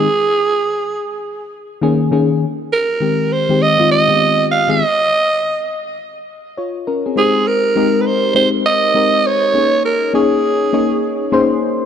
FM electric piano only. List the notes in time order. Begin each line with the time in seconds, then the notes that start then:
1.82 D#3 A#3 C#4 G#4
2.11 D#3 A#3 C#4 G#4
3.00 D#3 G#3 C4 G4
3.49 D#3 G#3 C4 G4
3.78 D#3 G#3 C4 F4
4.08 D#3 G#3 B3 G4
4.16 C4
4.68 D#3 G#3 C4 G#4
6.57 F4 C#5
6.87 C#4 A#4
7.06 C4 G#4
7.16 G#3 C4 D#4 G4 C5
7.76 G#3 C4 D#4 G4 A#4
8.35 G#3 C4 D#4 G4 C5
8.95 G#3 C4 D#4 G4 A#4
9.54 A#3 C#4 D#4 G#4 C#5
10.14 A#3 C#4 D#4 G#4 C#5
10.73 A#3 C#4 D#4 G#4 C#5
11.32 A#3 C#4 D#4 G#4 C5 C6